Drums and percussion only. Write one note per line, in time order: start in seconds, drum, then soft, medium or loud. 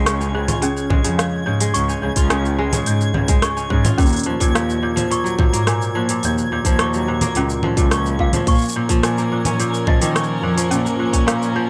0.06 cross-stick loud
0.06 open hi-hat soft
0.06 shaker medium
0.21 shaker soft
0.48 open hi-hat medium
0.48 low conga medium
0.48 shaker medium
0.62 open hi-hat soft
0.62 shaker medium
0.77 shaker soft
0.90 kick loud
0.90 low conga medium
1.04 open hi-hat medium
1.19 cross-stick loud
1.19 open hi-hat soft
1.19 shaker medium
1.61 open hi-hat medium
1.61 shaker medium
1.74 open hi-hat soft
1.74 shaker medium
1.89 shaker soft
2.16 kick medium
2.16 open hi-hat medium
2.16 shaker medium
2.30 cross-stick loud
2.30 open hi-hat soft
2.30 shaker medium
2.45 shaker soft
2.73 open hi-hat medium
2.73 low conga medium
2.73 shaker medium
2.86 open hi-hat soft
2.86 shaker medium
3.01 shaker soft
3.14 low conga medium
3.28 kick loud
3.28 open hi-hat medium
3.28 shaker medium
3.42 cross-stick loud
3.42 open hi-hat soft
3.42 shaker medium
3.57 shaker soft
3.70 kick medium
3.85 open hi-hat medium
3.85 low conga medium
3.85 shaker medium
3.98 kick loud
3.98 open hi-hat soft
3.98 shaker medium
4.02 open hi-hat soft
4.06 open hi-hat soft
4.06 shaker soft
4.09 open hi-hat soft
4.13 open hi-hat soft
4.16 open hi-hat soft
4.19 open hi-hat soft
4.23 open hi-hat soft
4.40 kick medium
4.40 open hi-hat soft
4.40 shaker medium
4.55 cross-stick loud
4.55 open hi-hat soft
4.55 shaker medium
4.70 shaker soft
4.97 open hi-hat medium
4.97 low conga medium
4.97 shaker medium
5.11 open hi-hat soft
5.11 shaker medium
5.26 shaker soft
5.39 kick loud
5.39 low conga medium
5.54 open hi-hat medium
5.54 shaker medium
5.67 cross-stick medium
5.67 open hi-hat soft
5.67 shaker medium
5.82 shaker soft
6.09 open hi-hat medium
6.09 shaker medium
6.23 open hi-hat soft
6.23 shaker medium
6.38 shaker soft
6.65 kick medium
6.65 open hi-hat soft
6.65 shaker medium
6.79 cross-stick loud
6.79 open hi-hat soft
6.94 shaker soft
7.21 open hi-hat medium
7.21 low conga medium
7.21 shaker medium
7.35 open hi-hat soft
7.35 shaker medium
7.50 shaker soft
7.63 low conga medium
7.77 kick loud
7.77 open hi-hat medium
7.77 shaker medium
7.91 cross-stick loud
7.91 open hi-hat soft
7.91 shaker medium
8.06 shaker soft
8.19 kick medium
8.33 open hi-hat medium
8.33 low conga medium
8.33 shaker medium
8.47 kick loud
8.47 open hi-hat soft
8.47 shaker soft
8.51 shaker soft
8.55 shaker soft
8.58 shaker soft
8.62 shaker soft
8.65 shaker soft
8.69 shaker soft
8.72 shaker medium
8.89 kick medium
8.89 open hi-hat soft
8.89 shaker medium
9.03 cross-stick loud
9.03 open hi-hat soft
9.03 shaker medium
9.18 shaker soft
9.45 open hi-hat medium
9.45 low conga medium
9.45 shaker medium
9.60 open hi-hat soft
9.60 shaker medium
9.74 shaker soft
9.87 kick loud
9.87 low conga medium
10.02 open hi-hat medium
10.02 shaker medium
10.16 cross-stick loud
10.16 open hi-hat soft
10.16 shaker medium
10.24 shaker soft
10.58 open hi-hat medium
10.58 shaker medium
10.71 open hi-hat soft
10.71 shaker medium
10.86 shaker soft
11.13 kick medium
11.13 open hi-hat medium
11.13 shaker medium
11.28 cross-stick loud
11.28 open hi-hat soft
11.28 shaker medium
11.42 shaker soft